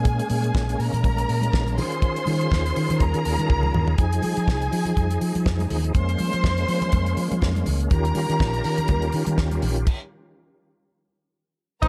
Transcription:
Already playing: fingered electric bass A#2, tonewheel organ G#3 A#3 C#4, string section G#4 G#5
0.05 kick, closed hi-hat
0.19 closed hi-hat, muted conga
0.30 fingered electric bass A#2, open hi-hat, high conga
0.44 closed hi-hat
0.54 fingered electric bass A#1, kick, snare, muted conga
0.69 closed hi-hat
0.79 fingered electric bass A#2, string section A#4 A#5, open hi-hat
0.93 fingered electric bass A#2, closed hi-hat, low conga
1.04 fingered electric bass A#1, kick, closed hi-hat, high conga
1.17 closed hi-hat, muted conga
1.29 fingered electric bass A#2, open hi-hat
1.41 closed hi-hat, high conga
1.52 fingered electric bass A#1, kick, snare, muted conga
1.67 closed hi-hat, muted conga, high conga
1.78 tonewheel organ D#3 F4 G#4, fingered electric bass D#3, string section C5 C6, open hi-hat, low conga
1.92 closed hi-hat
2.02 kick, closed hi-hat, muted conga
2.16 closed hi-hat, muted conga
2.26 fingered electric bass D#3, open hi-hat, high conga
2.41 closed hi-hat
2.51 fingered electric bass D#2, kick, snare, muted conga
2.66 closed hi-hat
2.76 fingered electric bass D#3, open hi-hat
2.89 fingered electric bass D#3, closed hi-hat, low conga
3.00 fingered electric bass D#2, string section A#4 A#5, kick, closed hi-hat, muted conga, high conga
3.14 fingered electric bass D#3, closed hi-hat, muted conga
3.25 fingered electric bass D#2, open hi-hat
3.38 fingered electric bass D#3, closed hi-hat, high conga
3.50 fingered electric bass C#2, kick, high tom
3.63 muted conga, high conga, low conga
3.74 fingered electric bass D#2, mid tom, low conga
3.88 floor tom
3.98 fingered electric bass F2, tonewheel organ F3 D#4 G#4, string section G#4 G#5, kick, closed hi-hat, muted conga
4.12 closed hi-hat, muted conga
4.22 fingered electric bass F3, open hi-hat, high conga
4.37 fingered electric bass F3, closed hi-hat
4.47 fingered electric bass C2, kick, snare, muted conga
4.60 closed hi-hat, muted conga
4.73 fingered electric bass F3, open hi-hat
4.85 closed hi-hat, low conga
4.97 fingered electric bass F2, kick, closed hi-hat, muted conga, high conga
5.10 closed hi-hat, muted conga
5.21 fingered electric bass F3, open hi-hat
5.35 fingered electric bass F3, closed hi-hat, high conga
5.46 fingered electric bass F2, kick, snare, muted conga
5.59 closed hi-hat, muted conga, high conga
5.70 fingered electric bass D#2, open hi-hat, low conga
5.84 closed hi-hat
5.94 fingered electric bass F2, tonewheel organ G#3 A#3 C#4, string section C5 C6, kick, closed hi-hat, muted conga
6.09 closed hi-hat
6.18 fingered electric bass F3, open hi-hat, high conga
6.33 fingered electric bass F3, closed hi-hat
6.43 fingered electric bass F2, kick, snare, muted conga
6.57 closed hi-hat, muted conga
6.68 fingered electric bass F3, open hi-hat
6.82 closed hi-hat, low conga
6.92 fingered electric bass F2, kick, closed hi-hat, high conga
7.06 closed hi-hat, muted conga
7.17 fingered electric bass F3, open hi-hat
7.31 fingered electric bass F3, closed hi-hat, high conga
7.42 fingered electric bass F2, kick, snare, muted conga
7.55 closed hi-hat, muted conga, high conga
7.66 fingered electric bass C#2, open hi-hat, low conga
7.80 closed hi-hat
7.90 fingered electric bass D#2, tonewheel organ D#3 F4 G4, string section A#4 A#5, kick, closed hi-hat, muted conga
8.05 closed hi-hat, muted conga
8.15 fingered electric bass D#3, open hi-hat, high conga
8.30 fingered electric bass D#3, closed hi-hat
8.39 fingered electric bass A#1, kick, snare, muted conga
8.53 closed hi-hat, muted conga
8.64 fingered electric bass D#3, open hi-hat
8.78 closed hi-hat, low conga
8.88 fingered electric bass D#2, kick, closed hi-hat, muted conga, high conga
9.02 closed hi-hat
9.12 fingered electric bass D#3, open hi-hat
9.26 fingered electric bass D#3, closed hi-hat, high conga
9.38 fingered electric bass D#2, kick, snare, muted conga
9.51 closed hi-hat, high conga
9.62 fingered electric bass A#1, open hi-hat, low conga
9.76 closed hi-hat
9.87 kick, crash
11.82 fingered electric bass A#1, tonewheel organ G#3 A#3 C#4, horn section D#4 C5 D#5, string section A#4 A#5, kick, crash

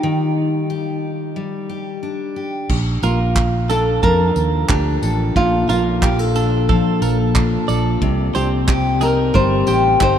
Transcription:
Already playing: steel-string acoustic guitar G3 G4, nylon-string guitar D#4
0.03 steel-string acoustic guitar D#3
0.70 steel-string acoustic guitar G4
1.36 steel-string acoustic guitar G3
1.69 steel-string acoustic guitar G4
2.03 steel-string acoustic guitar D4
2.36 steel-string acoustic guitar G4
2.69 fretless electric bass A#1, kick, crash
3.03 fretless electric bass A#1, steel-string acoustic guitar A#3, nylon-string guitar F4, clean electric guitar A#4, tambourine
3.36 kick, clap
3.70 steel-string acoustic guitar D4, clean electric guitar A4, nylon-string guitar A4, tambourine
4.03 fretless electric bass F2, steel-string acoustic guitar F3, nylon-string guitar A#4, clean electric guitar A5, kick
4.36 fretless electric bass D#2, clean electric guitar A#4, tambourine
4.69 fretless electric bass D2, steel-string acoustic guitar D4, nylon-string guitar G4, kick, clap
5.02 fretless electric bass A1, steel-string acoustic guitar A4, tambourine
5.36 fretless electric bass A#1, steel-string acoustic guitar A#2, nylon-string guitar F4, kick
5.69 fretless electric bass A#1, steel-string acoustic guitar A#3, nylon-string guitar F4, clean electric guitar A#4, tambourine
6.02 steel-string acoustic guitar G4, kick, clap
6.19 steel-string acoustic guitar A4
6.35 steel-string acoustic guitar D4, clean electric guitar A4, tambourine
6.69 steel-string acoustic guitar F3, clean electric guitar A4, kick
7.02 fretless electric bass A#1, steel-string acoustic guitar A4, clean electric guitar A#4, tambourine
7.35 steel-string acoustic guitar D4, kick, clap
7.68 fretless electric bass A#1, steel-string acoustic guitar A4, clean electric guitar D5, tambourine
8.02 fretless electric bass C2, steel-string acoustic guitar C3, kick
8.35 fretless electric bass C2, steel-string acoustic guitar C4, nylon-string guitar G4, clean electric guitar C5, tambourine
8.68 steel-string acoustic guitar G4, kick, clap
9.01 steel-string acoustic guitar D#4, clean electric guitar A#4, nylon-string guitar A#4, tambourine
9.34 fretless electric bass G1, steel-string acoustic guitar G3, clean electric guitar A#4, nylon-string guitar C5, kick
9.67 fretless electric bass A1, steel-string acoustic guitar G4, clean electric guitar C5, tambourine
10.01 fretless electric bass G1, steel-string acoustic guitar D#4, nylon-string guitar C5, kick, clap

